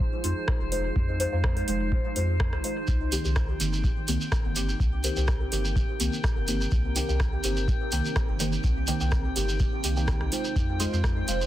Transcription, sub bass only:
0.24 F2
0.61 F1
0.96 F2
1.33 F2
1.68 F1
2.16 F2
2.53 C2
2.88 C2
3.25 C2
3.60 G1
4.08 C2
4.45 G1
4.80 C2
5.17 C2
5.52 G1
6.00 C2
6.37 G1
6.72 C2
7.09 C2
7.44 G1
7.92 C2
8.29 G1
8.64 C2
9.01 C2
9.36 G1
9.84 C2
10.21 C2
10.56 F2
10.93 F2
11.28 F1

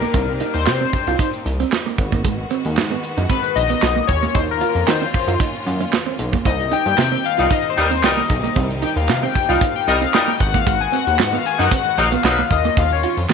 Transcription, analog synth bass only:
0.14 C2
0.55 D#2
0.67 C3
1.07 C2
1.46 C2
1.98 G#1
2.65 D#2
2.77 G#2
3.18 F#2
3.56 A#1
3.83 B1
4.09 D#2
4.35 D#2
4.75 F2
4.88 D#3
5.27 F#2
5.66 F#2
6.19 B1
6.46 C2
6.86 G2
6.98 C3
7.39 C2
7.78 D#2
8.04 C2
8.30 B1
8.56 C2
8.96 D#2
9.09 C3
9.49 C2
9.87 C2
10.40 G#1
11.07 D#2
11.19 G#2
11.59 F#2
11.98 A#1
12.24 B1
12.51 D#2
12.77 D#2
13.17 F2
13.29 D#3

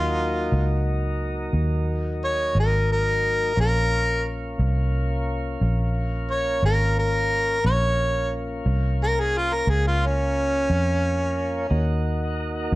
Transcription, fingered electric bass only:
Already playing: D#2
0.52 C#2
1.53 D#2
2.55 G#1
3.57 A#1
4.59 C2
5.61 A#1
6.63 G#1
7.65 A#1
8.66 C2
9.67 C#2
10.70 F2
11.71 D#2
12.72 F2

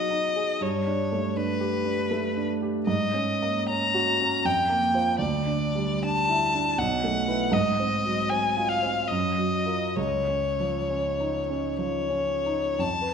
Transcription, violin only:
Already playing: D#5
0.62 C#5
1.36 B4
2.87 D#5
3.69 A#5
4.45 G5
5.20 D5
6.05 A5
6.78 F#5
7.53 D#5
8.30 G#5
8.69 F5
9.08 D#5
9.97 C#5
11.80 C#5
12.80 A5

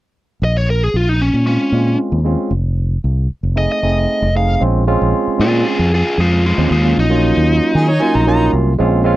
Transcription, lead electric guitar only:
0.44 D#5
0.57 C#5
0.70 A#4
0.83 G#4
0.96 F4
1.09 D#4
1.21 C#4
1.47 C#4
3.58 D#5
3.72 D#5
4.37 F5
5.41 F4 G#4
5.67 F4 G#4
5.94 F4 G#4
6.20 G#3 F4
6.46 G#3 F4
6.72 G#3 F4
7.00 D#4

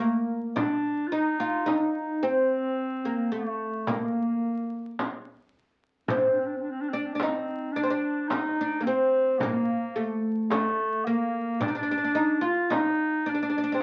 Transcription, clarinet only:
Already playing: A3
0.59 D4
1.07 F4
1.13 D#4
1.69 D#4
1.76 D4
1.82 D#4
2.24 C4
3.32 A3
3.88 A#3
6.08 C4
6.17 D4
6.23 C4
6.32 D4
6.39 C4
6.46 D4
6.56 C4
6.62 D4
6.70 C4
6.81 D4
6.89 C4
6.97 D4
7.06 C4
7.13 D4
7.21 C4
7.72 D4
7.86 D4
8.28 D#4
8.84 C4
9.38 A#3
10.49 A3
11.05 A#3
11.62 D4
11.70 D#4
11.76 D4
12.45 F4
12.72 D#4
13.30 D4

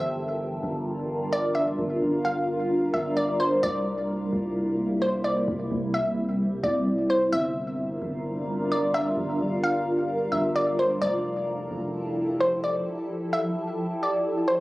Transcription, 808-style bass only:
Already playing: G1
0.63 G1
1.79 G1
2.02 G1
2.94 G1
3.63 C2
4.33 C2
5.48 C2
5.71 C2
6.63 C2
7.33 G1
8.02 G1
9.17 G1
9.40 G1
10.33 G1
11.02 F1
11.71 F1

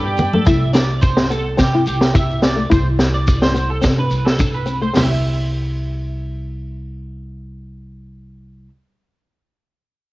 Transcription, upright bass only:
Already playing: G2
0.46 C2
1.58 C3
1.87 C2
2.71 C2
3.84 C3
4.11 C2
4.96 C2

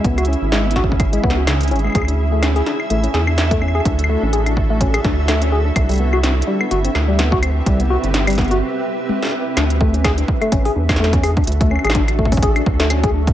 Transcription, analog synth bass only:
0.04 C#2
0.42 G#1
1.24 C#2
1.71 G#1
1.95 D2
2.90 A1
3.14 E2
3.85 D2
4.23 A1
5.04 D2
5.76 C2
6.71 G1
6.95 D2
7.66 C2
8.04 G1
9.57 D2
10.52 A1
10.76 E2
11.47 D2
11.84 A1
12.66 D2

